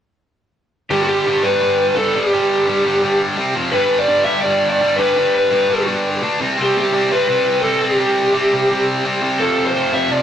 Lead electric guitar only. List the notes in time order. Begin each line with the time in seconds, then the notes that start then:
0.91 G4
1.02 F#4
1.07 G4
1.43 B4
1.96 A4
2.14 G4
3.72 B4
3.99 D5
4.24 E5
4.42 D5
4.70 D5
4.96 B4
5.35 B4
6.62 G4
6.78 G4
7.12 B4
7.62 A4
7.80 G4
9.40 A4
9.67 C5
9.93 E5
10.11 D5